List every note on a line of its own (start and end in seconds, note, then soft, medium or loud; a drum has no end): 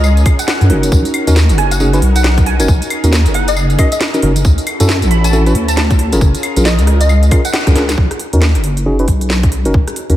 0.00 0.24 C#2 medium
0.00 4.41 C#4 medium
0.00 0.90 F4 medium
0.00 0.90 G#4 medium
0.00 0.90 A#4 medium
0.00 tambourine medium
0.00 claves medium
0.17 closed hi-hat soft
0.17 tambourine soft
0.26 kick loud
0.26 open hi-hat loud
0.26 claves medium
0.39 0.45 F#5 medium
0.39 closed hi-hat medium
0.39 tambourine medium
0.48 0.56 F#5 medium
0.48 snare loud
0.48 tambourine medium
0.61 0.71 F#2 medium
0.61 closed hi-hat soft
0.61 tambourine soft
0.70 0.90 F#1 loud
0.70 1.24 C#4 medium
0.70 1.24 D#4 medium
0.70 1.24 F#4 medium
0.70 1.24 A#4 medium
0.70 open hi-hat medium
0.83 closed hi-hat medium
0.83 tambourine medium
0.92 1.04 B1 loud
0.92 4.41 D#4 medium
0.92 2.67 F#4 medium
0.92 4.41 A#4 medium
0.92 kick loud
0.92 tambourine medium
1.05 closed hi-hat medium
1.05 tambourine soft
1.14 open hi-hat loud
1.14 claves medium
1.27 1.51 D#2 medium
1.27 1.36 C#4 medium
1.27 1.36 D#4 medium
1.27 1.36 F#4 medium
1.27 1.36 A#4 loud
1.27 closed hi-hat medium
1.27 tambourine medium
1.36 snare loud
1.36 tambourine medium
1.49 2.01 F#1 medium
1.49 closed hi-hat medium
1.49 tambourine soft
1.58 1.69 G#5 medium
1.58 cross-stick medium
1.58 open hi-hat medium
1.71 1.84 F#5 loud
1.71 closed hi-hat medium
1.71 tambourine medium
1.80 1.90 C#4 medium
1.80 1.90 D#4 medium
1.80 1.90 F#4 medium
1.80 1.90 G#4 medium
1.80 tambourine medium
1.93 1.99 C#4 medium
1.93 1.99 D#4 medium
1.93 1.99 F#4 medium
1.93 1.99 B4 medium
1.93 closed hi-hat soft
1.93 tambourine soft
2.02 2.61 B1 medium
2.02 open hi-hat loud
2.16 2.21 F#5 medium
2.16 closed hi-hat medium
2.16 tambourine medium
2.24 2.33 F#5 medium
2.24 snare loud
2.24 tambourine medium
2.38 kick loud
2.38 closed hi-hat soft
2.38 tambourine soft
2.46 2.55 G#5 medium
2.46 open hi-hat medium
2.59 2.67 F#1 medium
2.59 2.68 C#4 medium
2.59 2.68 D#4 medium
2.59 2.68 F#4 medium
2.59 2.68 A#4 loud
2.59 2.65 G#5 medium
2.59 closed hi-hat medium
2.59 tambourine medium
2.68 2.80 B1 loud
2.68 4.43 G#4 medium
2.68 kick loud
2.68 tambourine medium
2.82 closed hi-hat medium
2.82 tambourine soft
2.90 open hi-hat loud
2.90 claves medium
3.04 3.27 D#2 medium
3.04 3.12 C#4 medium
3.04 3.12 D#4 medium
3.04 3.12 F#4 medium
3.04 3.12 A#4 medium
3.04 closed hi-hat medium
3.04 tambourine medium
3.13 snare loud
3.13 tambourine medium
3.26 3.77 F#1 medium
3.26 closed hi-hat medium
3.26 tambourine soft
3.34 3.45 F#5 medium
3.34 open hi-hat medium
3.48 3.61 D#5 loud
3.48 closed hi-hat medium
3.48 tambourine medium
3.57 tambourine medium
3.57 claves medium
3.70 closed hi-hat soft
3.70 tambourine soft
3.79 3.87 C#4 medium
3.79 3.87 D#4 medium
3.79 3.87 F#4 medium
3.79 3.87 A#4 medium
3.79 3.87 D#5 medium
3.79 kick loud
3.79 open hi-hat loud
3.79 claves medium
3.92 3.98 D#5 medium
3.92 closed hi-hat medium
3.92 tambourine medium
4.01 snare loud
4.01 tambourine medium
4.14 4.19 C#4 medium
4.14 4.20 D#4 medium
4.14 4.19 F#4 medium
4.14 4.20 A#4 medium
4.14 closed hi-hat soft
4.14 tambourine soft
4.22 4.43 F#1 medium
4.22 4.31 C#4 medium
4.22 4.31 D#4 medium
4.22 4.31 F#4 medium
4.22 4.31 A#4 medium
4.22 open hi-hat loud
4.36 closed hi-hat medium
4.36 tambourine medium
4.45 4.57 D2 loud
4.45 7.94 C#4 medium
4.45 5.98 E4 medium
4.45 5.98 F#4 medium
4.45 5.98 A4 medium
4.45 kick loud
4.45 tambourine medium
4.58 closed hi-hat medium
4.58 tambourine soft
4.67 open hi-hat loud
4.67 claves medium
4.80 5.04 F#2 medium
4.80 4.89 C#4 loud
4.80 4.89 E4 medium
4.80 4.89 F#4 medium
4.80 4.89 A4 loud
4.80 closed hi-hat medium
4.80 tambourine medium
4.89 snare loud
4.89 tambourine medium
5.02 5.53 A1 medium
5.02 closed hi-hat medium
5.02 tambourine soft
5.11 5.22 B5 medium
5.11 open hi-hat medium
5.24 5.37 A5 medium
5.24 closed hi-hat medium
5.24 tambourine medium
5.33 5.43 C#4 medium
5.33 5.43 E4 medium
5.33 5.43 F#4 medium
5.33 5.43 A4 loud
5.33 tambourine medium
5.46 5.52 C#4 medium
5.46 5.52 E4 medium
5.46 5.52 F#4 medium
5.46 5.52 B4 medium
5.46 closed hi-hat soft
5.46 tambourine soft
5.55 6.14 D2 medium
5.55 open hi-hat loud
5.68 5.74 A5 medium
5.68 closed hi-hat medium
5.68 tambourine medium
5.77 5.86 A5 medium
5.77 snare loud
5.77 tambourine medium
5.91 kick loud
5.91 closed hi-hat soft
5.91 tambourine soft
5.99 7.96 F4 medium
5.99 7.96 G#4 medium
5.99 7.96 A#4 medium
5.99 open hi-hat medium
6.12 6.20 F#1 medium
6.12 6.21 C#4 medium
6.12 6.21 F4 medium
6.12 6.21 G#4 medium
6.12 6.21 A#4 loud
6.12 closed hi-hat medium
6.12 tambourine medium
6.21 6.33 F#1 loud
6.21 kick loud
6.21 tambourine medium
6.35 closed hi-hat medium
6.35 tambourine soft
6.43 open hi-hat loud
6.43 claves medium
6.57 6.80 A#1 medium
6.57 6.65 C#4 medium
6.57 6.65 F4 medium
6.57 6.65 G#4 medium
6.57 6.65 A#4 medium
6.57 closed hi-hat medium
6.57 tambourine medium
6.65 6.81 D#5 medium
6.65 snare loud
6.65 tambourine medium
6.79 7.30 C#2 medium
6.79 closed hi-hat medium
6.79 tambourine soft
6.87 cross-stick medium
6.87 open hi-hat loud
7.01 7.14 D#5 medium
7.01 closed hi-hat medium
7.01 tambourine medium
7.09 tambourine medium
7.09 claves medium
7.23 closed hi-hat soft
7.23 tambourine soft
7.31 7.40 C#4 medium
7.31 7.40 F4 medium
7.31 7.40 G#4 medium
7.31 7.40 A#4 medium
7.31 kick loud
7.31 open hi-hat loud
7.31 claves medium
7.45 7.51 F#5 medium
7.45 closed hi-hat medium
7.45 tambourine medium
7.53 7.62 F#5 medium
7.53 snare loud
7.53 tambourine medium
7.67 7.75 C#2 loud
7.67 7.72 C#4 medium
7.67 7.72 F4 medium
7.67 7.72 G#4 medium
7.67 7.72 A#4 medium
7.67 kick medium
7.67 cross-stick medium
7.67 closed hi-hat soft
7.67 tambourine soft
7.75 7.96 C#2 medium
7.75 7.84 C#4 medium
7.75 7.84 F4 medium
7.75 7.84 G#4 medium
7.75 7.84 A#4 medium
7.75 snare medium
7.75 open hi-hat loud
7.89 snare medium
7.89 closed hi-hat medium
7.89 tambourine medium
7.98 8.09 B1 loud
7.98 kick loud
8.11 cross-stick medium
8.11 closed hi-hat medium
8.20 open hi-hat loud
8.33 8.57 D#2 medium
8.33 8.42 C#4 medium
8.33 8.42 D#4 medium
8.33 8.42 F#4 medium
8.33 8.42 A#4 loud
8.33 closed hi-hat medium
8.42 snare loud
8.55 9.06 F#1 medium
8.55 cross-stick soft
8.55 closed hi-hat medium
8.64 open hi-hat medium
8.77 closed hi-hat medium
8.86 8.96 C#4 medium
8.86 8.96 D#4 medium
8.86 8.96 F#4 medium
8.86 8.96 G#4 medium
8.99 9.05 C#4 medium
8.99 9.05 D#4 medium
8.99 9.05 F#4 medium
8.99 9.05 B4 medium
8.99 closed hi-hat soft
9.08 9.67 B1 medium
9.08 kick medium
9.08 open hi-hat loud
9.21 closed hi-hat medium
9.30 snare loud
9.43 kick loud
9.43 closed hi-hat soft
9.52 open hi-hat medium
9.65 9.73 F#1 medium
9.65 9.74 C#4 medium
9.65 9.74 D#4 medium
9.65 9.74 F#4 medium
9.65 9.74 A#4 loud
9.65 closed hi-hat medium
9.74 9.86 B1 loud
9.74 kick loud
9.88 cross-stick medium
9.88 closed hi-hat soft
9.96 open hi-hat loud
10.10 10.17 D#2 medium
10.10 10.17 C#4 medium
10.10 10.17 D#4 medium
10.10 10.17 F#4 medium
10.10 10.17 A#4 medium
10.10 closed hi-hat medium